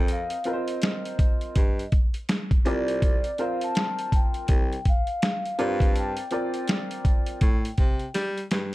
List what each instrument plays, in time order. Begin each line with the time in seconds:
Already playing: baritone saxophone F2, upright piano C4 F4 A#4 D#5
0.08 vibraphone F5, closed hi-hat
0.30 closed hi-hat
0.44 upright piano C4 F4 A#4 B4, closed hi-hat
0.49 vibraphone D#5
0.53 upright piano C5
0.68 closed hi-hat
0.82 snare, closed hi-hat
1.05 closed hi-hat
1.19 kick, closed hi-hat
1.41 closed hi-hat
1.56 baritone saxophone G2, kick, closed hi-hat
1.79 closed hi-hat
1.92 kick, closed hi-hat
2.14 closed hi-hat
2.29 snare, closed hi-hat
2.51 kick, closed hi-hat
2.65 baritone saxophone C2, upright piano C4 F4 A#4 D5, vibraphone D5, closed hi-hat
2.88 closed hi-hat
3.02 kick, closed hi-hat
3.24 closed hi-hat
3.38 upright piano C4 F4 A#4 C5, vibraphone F5, closed hi-hat
3.61 vibraphone A5, closed hi-hat
3.75 snare, closed hi-hat
3.99 closed hi-hat
4.12 vibraphone G5, kick, closed hi-hat
4.34 closed hi-hat
4.48 baritone saxophone C2, kick, closed hi-hat
4.73 closed hi-hat
4.85 vibraphone F5, kick, closed hi-hat
5.07 closed hi-hat
5.22 snare, closed hi-hat
5.46 closed hi-hat
5.59 baritone saxophone G2, upright piano C4 F4 A#4 D5, closed hi-hat
5.80 kick, closed hi-hat
5.93 vibraphone A5, closed hi-hat
5.99 vibraphone G5
6.17 closed hi-hat
6.31 upright piano C4 F4 A#4 D5, closed hi-hat
6.54 closed hi-hat
6.68 snare, closed hi-hat
6.91 closed hi-hat
7.05 kick, closed hi-hat
7.26 closed hi-hat
7.41 baritone saxophone A2, kick, closed hi-hat
7.65 closed hi-hat
7.78 baritone saxophone C3, kick, closed hi-hat
7.99 closed hi-hat
8.14 baritone saxophone G3, snare, closed hi-hat
8.38 closed hi-hat
8.51 baritone saxophone G2, snare, closed hi-hat